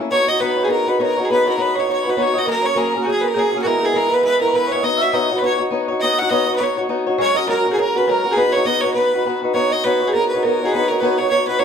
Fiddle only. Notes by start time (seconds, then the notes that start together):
0.11 C#5
0.28 D#5
0.40 B4
0.64 G#4
0.71 A#4
0.89 B4
1.02 A#4
1.25 G#4
1.32 B4
1.49 A#4
1.61 B4
1.80 C#5
1.93 C#5
2.10 B4
2.22 C#5
2.38 D#5
2.50 A#4
2.66 C#5
2.78 A#4
3.03 F#4
3.11 G#4
3.21 B4
3.28 A#4
3.39 G#4
3.62 F#4
3.67 A#4
3.85 G#4
3.96 A#4
4.14 B4
4.24 B4
4.41 A#4
4.56 B4
4.72 C#5
4.84 D#5
5.02 E5
5.14 D#5
5.38 B4
5.45 C#5
6.00 D#5
6.18 F#5
6.30 D#5
6.56 B4
6.63 C#5
7.21 C#5
7.37 D#5
7.49 A#4
7.73 G#4
7.80 A#4
7.98 B4
8.10 A#4
8.32 G#4
8.38 B4
8.52 C#5
8.66 D#5
8.81 C#5
8.93 B4
9.54 C#5
9.72 D#5
9.84 B4
10.08 G#4
10.13 A#4
10.29 B4
10.43 A#4
10.65 G#4
10.71 B4
10.88 A#4
11.00 B4
11.18 C#5
11.30 C#5
11.47 B4
11.59 C#5